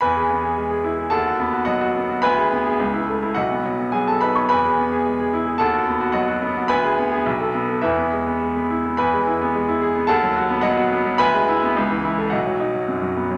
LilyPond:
<<
  \new Staff \with { instrumentName = "Grand piano" } { \time 2/4 \key e \major \tempo 4 = 108 <b' gis'' b''>2 | <a' fis'' a''>4 <fis' dis'' fis''>4 | <b' gis'' b''>2 | <fis' dis'' fis''>4 <gis' gis''>16 <a' a''>16 <b' b''>16 <cis'' cis'''>16 |
<b' gis'' b''>2 | <a' fis'' a''>4 <fis' dis'' fis''>4 | <b' gis'' b''>2 | <e' b' e''>4. r8 |
<b' gis'' b''>2 | <a' fis'' a''>4 <fis' dis'' fis''>4 | <b' gis'' b''>2 | <fis' dis'' fis''>4 r4 | }
  \new Staff \with { instrumentName = "Grand piano" } { \time 2/4 \key e \major e,16 gis'16 b16 gis'16 gis16 gis'16 e'16 gis'16 | dis,16 fis'16 b16 fis'16 fis16 fis'16 b16 fis'16 | d,16 gis'16 b16 gis'16 cis,16 e'16 a16 e'16 | b,,16 b16 fis16 b16 fis16 b16 dis'16 b16 |
e,16 gis'16 b16 gis'16 gis16 gis'16 e'16 gis'16 | dis,16 fis'16 b16 fis'16 fis16 fis'16 b16 fis'16 | d,16 gis'16 b16 gis'16 b,,16 a'16 b16 a'16 | e,16 b16 gis16 b16 gis16 b16 e'16 b16 |
e,16 gis16 e'16 b16 gis16 e'16 gis'16 b16 | dis,16 fis16 fis'16 b16 fis16 fis'16 b16 fis16 | d,16 gis16 e'16 b16 cis,16 e16 e'16 a'16 | b,,16 fis16 dis'16 fis16 fis,16 fis16 b16 fis16 | }
>>